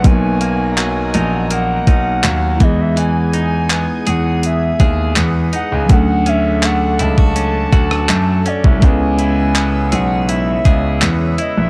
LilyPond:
<<
  \new Staff \with { instrumentName = "Ambient pad" } { \time 4/4 \key e \lydian \tempo 4 = 82 <dis'' fis'' ais''>2.~ <dis'' fis'' ais''>8 <gis' gis'' dis'''>8~ | <gis' gis'' dis'''>1 | <a' fis'' d'''>1 | <cis'' b'' e'''>1 | }
  \new Staff \with { instrumentName = "Soft synth lead" } { \time 4/4 \key e \lydian gis''4 gis''4 fis''4. dis''16 e''16 | gis''4. fis''8 e''4 r8 fis''16 gis''16 | fis''8 e''8 fis''8 a''2 d''16 e''16 | gis''4. fis''8 e''4 r8 dis''16 e''16 | }
  \new Staff \with { instrumentName = "Clean electric guitar" } { \time 4/4 \key e \lydian r8 ais8 fis8 dis'8 ais8 dis'8 fis8 e8 | e8 dis'8 b8 gis'4 gis'8 b8 dis'8 | r8 cis'8 a8 e'16 fis'16 cis'8 fis'8 a8 cis'8 | cis8 e'8 b8 gis'8 e'8 gis'8 b8 e'8 | }
  \new Staff \with { instrumentName = "Tine electric piano" } { \time 4/4 \key e \lydian <fis ais b dis' ais'>2.~ <fis ais b dis' ais'>8 <gis b e' gis'>8~ | <gis b e' gis'>2.~ <gis b e' gis'>8 r8 | <fis a cis' d' a'>1 | <gis b cis' e' b'>1 | }
  \new Staff \with { instrumentName = "Grand piano" } { \clef bass \time 4/4 \key e \lydian b,,4. ais,,4 b,,8 dis,8 e,8~ | e,4. e,4 dis,8 e,8 r16 cis,16 | d,4. cis,4 d,8 fis,8 r16 bis,,16 | cis,4. b,,4 cis,8 e,8 r16 ais,,16 | }
  \new DrumStaff \with { instrumentName = "Drums" } \drummode { \time 4/4 <hh bd>8 hh8 <hc hh>8 hh8 hh8 <hh bd>8 <hc hh>8 <hh bd>8 | hh8 hh8 <hc hh>8 hh8 hh8 <hh bd>8 <hc hh>8 hh8 | <hh bd>8 hh8 <hc hh>8 hh16 bd16 hh8 <hh bd>16 ss16 <hc hh>8 hh16 bd16 | <hh bd>8 hh8 <hc hh>8 hh8 hh8 <hh bd>8 <hc hh>8 hh8 | }
>>